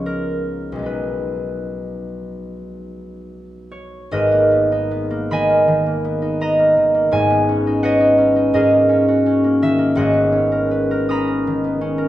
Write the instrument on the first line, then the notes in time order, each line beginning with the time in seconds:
harp
Already playing: C#2 F3 G#3 B3 D#4 C#5 D#5 F5 G#5 B5
0.06 A#4
0.72 B1 G#3
0.79 B3 D#4
0.86 B4
3.72 C#5
4.11 G#1 G#2 A#4 B4 D#5
4.32 A#3
4.51 B3
4.72 D#4
4.91 B3
5.10 A#3
5.31 D#3 D#5 G#5 B5
5.50 A#3
5.68 D#3
5.86 A#3
6.04 B3
6.22 D#4
6.41 B3 D#5 A#5
6.59 A#3
6.77 D#3
6.94 A#3
7.11 G#1 G#2 G#5
7.30 B3
7.49 C#4
7.67 D#4
7.83 B4 C#5 D#5 F#5
8.00 D#4
8.18 C#4
8.36 D#4
8.54 G#2 G#4 A#4 D#5
8.71 A#3
8.89 C#4
9.08 F#4
9.26 C#4
9.44 A#3
9.62 D#3 E5
9.78 A#3
9.95 G#1 G#2 C#5 D#5 F#5
10.13 B3
10.32 C#4
10.52 A#4
10.71 B4
10.91 A#4
11.09 C#4 A#5 B5 D#6
11.27 A#4
11.47 D#3
11.64 B3
11.81 C#4
11.98 A#4